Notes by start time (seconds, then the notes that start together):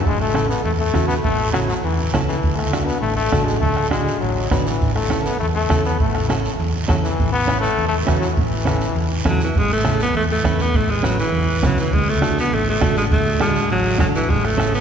0.06 A1 G#3, bombo low, high conga, long guiro
0.21 A3
0.34 C#4 E4 A4, bombo rim, high conga, short guiro
0.49 B3, short guiro
0.65 E2 A3, high conga, long guiro
0.79 A3
0.94 E2 C#4 E4 F#4, bombo low, bombo rim, high conga, short guiro
1.08 B3, short guiro
1.23 A1 A3, bombo low, high conga, long guiro
1.53 F#3 C#4 E4 F#4, bombo rim, high conga, short guiro
1.68 F#3, short guiro
1.83 E2 E3, high conga, long guiro
2.14 C#2 F#3 C#4 E4 A4, bombo low, bombo rim, high conga, low conga, short guiro
2.27 E3, short guiro
2.43 D2, bombo low, high conga, long guiro
2.56 A3, bombo rim
2.73 D4 F#4 A4, bombo rim, high conga, short guiro
2.86 B3, short guiro
3.01 A1 A3, high conga, long guiro
3.16 A3
3.32 A1 D4 F#4 A4, bombo low, bombo rim, high conga, short guiro
3.45 G#3, short guiro
3.60 D2 A3, bombo low, high conga, long guiro
3.77 bombo rim, low conga
3.90 G#3 D4 F#4 A4, bombo rim, high conga, short guiro
4.08 short guiro
4.20 A1 F#3, high conga, long guiro
4.51 A1 F#3 D4 F#4 B4, bombo low, bombo rim, high conga, low conga, short guiro
4.65 E3, short guiro
4.81 A1, bombo low, high conga, long guiro
4.95 A3, bombo rim
5.10 C#4 E4 A4, bombo rim, high conga, short guiro
5.25 B3, short guiro
5.40 E2 A3, high conga, long guiro
5.55 A3
5.70 E2 C#4 E4 A4, bombo low, bombo rim, high conga, short guiro
5.85 B3, short guiro
6.00 A1 A3, bombo low, high conga, long guiro
6.15 bombo rim, low conga
6.29 F#3 C#4 E4 A4, bombo rim, high conga, short guiro
6.45 short guiro
6.60 E2, high conga, long guiro
6.88 E2 F#3 C#4 E4 A4, bombo low, bombo rim, high conga, low conga, short guiro
7.02 E3, short guiro
7.19 A1, bombo low, high conga, long guiro
7.32 B3, bombo rim
7.47 C#4 E4 B4, bombo rim, high conga, short guiro
7.61 A3, short guiro
7.78 E2, high conga, long guiro
7.88 A3
8.05 E2 E3 C#4 E4 F#4, bombo low, bombo rim, high conga, short guiro
8.20 F#3, short guiro
8.34 E3, bombo low, high conga, long guiro
8.38 A1
8.65 C#4 E4 A4, bombo rim, high conga, short guiro
8.81 short guiro
8.95 E2, high conga, long guiro
9.25 E2 F#3 C#4 E4 A4, bombo low, bombo rim, high conga, low conga, short guiro
9.40 E3, short guiro
9.55 A1 G#3, bombo low, high conga, long guiro
9.73 A3
9.84 C#4 E4 A4, bombo rim, high conga, short guiro
10.00 B3, short guiro
10.14 E2 A3, high conga, long guiro
10.32 A3
10.44 E2 C#4 E4 B4, bombo low, bombo rim, high conga, short guiro
10.59 B3, short guiro
10.74 A1 A3, bombo low, high conga, long guiro
10.90 G#3
11.03 F#3 C#4 E4 B4, bombo rim, high conga, short guiro
11.20 E3, short guiro
11.33 E2, high conga, long guiro
11.63 C#2 F#3 C#4 E4 B4, bombo low, bombo rim, high conga, low conga, short guiro
11.78 E3, short guiro
11.93 D2 G#3, bombo low, high conga, long guiro
12.09 A3
12.22 D4 F#4 A4, bombo rim, high conga, short guiro
12.39 B3, short guiro
12.52 A1 A3, high conga, long guiro
12.69 A3
12.81 A1 D4 F#4 A4, bombo low, bombo rim, high conga, short guiro
12.97 G#3, short guiro
13.11 D2 A3, bombo low, high conga, long guiro
13.40 G#3 D4 F#4 A4, bombo rim, high conga, short guiro
13.56 short guiro
13.70 A1 F#3, high conga, long guiro
13.98 A1 F#3 D4 F#4 A4, bombo low, bombo rim, high conga, low conga, short guiro
14.15 E3, short guiro
14.29 A1 G#3, bombo low, high conga, long guiro
14.45 A3, bombo rim
14.58 C#4 E4 A4, bombo rim, high conga, short guiro
14.75 B3, short guiro